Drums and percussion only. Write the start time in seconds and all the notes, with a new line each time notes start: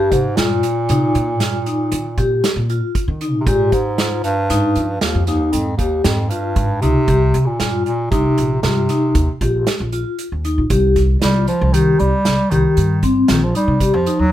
0.12 kick, closed hi-hat
0.37 snare, closed hi-hat
0.63 closed hi-hat
0.89 closed hi-hat
1.15 closed hi-hat
1.40 snare, closed hi-hat
1.66 closed hi-hat
1.92 closed hi-hat
2.18 kick, closed hi-hat
2.44 snare, closed hi-hat
2.69 closed hi-hat
2.95 kick, closed hi-hat
3.21 closed hi-hat
3.47 kick, closed hi-hat
3.72 kick, closed hi-hat
3.98 snare, closed hi-hat
4.24 closed hi-hat
4.50 snare, closed hi-hat
4.75 closed hi-hat
5.01 snare, closed hi-hat
5.27 snare, closed hi-hat
5.53 closed hi-hat
5.79 kick, closed hi-hat
6.04 snare, closed hi-hat
6.30 closed hi-hat
6.56 kick, closed hi-hat
6.82 closed hi-hat
7.08 kick, closed hi-hat
7.34 closed hi-hat
7.60 snare, closed hi-hat
7.86 closed hi-hat
8.12 kick, closed hi-hat
8.38 closed hi-hat
8.63 snare, closed hi-hat
8.89 snare, closed hi-hat
9.15 kick, closed hi-hat
9.41 kick, closed hi-hat
9.67 snare, closed hi-hat
9.92 closed hi-hat
10.19 closed hi-hat
10.45 closed hi-hat
10.70 kick, closed hi-hat
10.96 kick, snare, closed hi-hat
11.22 snare, closed hi-hat
11.48 closed hi-hat
11.74 closed hi-hat
11.99 closed hi-hat
12.25 snare, closed hi-hat
12.51 closed hi-hat
12.77 closed hi-hat
13.03 kick, closed hi-hat
13.28 snare, closed hi-hat
13.55 closed hi-hat
13.80 kick, closed hi-hat
14.06 closed hi-hat